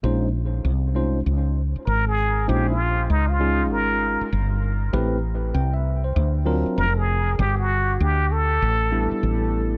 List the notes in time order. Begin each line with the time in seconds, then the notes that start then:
0.03 A#1 G#3 C#4 D#4 F4 C5
0.65 C2
0.95 G#3 C#4 D#4 F4 C5
1.26 C#2
1.76 muted fretless electric bass stroke
1.87 G#1 A#4
2.07 G#4
2.47 A#1 G#3 C#4 D#4 F4 G4 C5
2.69 F4
3.10 C#2 D#4
3.29 F4
3.40 G#3 C#4 D#4 F4 G#4
3.71 G#1 A#4
4.21 muted fretless electric bass stroke
4.33 G1
4.93 A1 A3 C4 E4 G4 B4
5.54 C2 G5
5.74 E5
6.04 C5
6.16 D2
6.45 F#3 C4 D4 F4 A#4
6.66 muted fretless electric bass stroke
6.78 F1 A#4
6.97 G#4
7.39 G1 G4
7.59 F#4
8.00 D2 G4
8.32 A4
8.62 A1
8.91 G3 B3 D4 E4 A4
9.12 muted fretless electric bass stroke
9.23 A1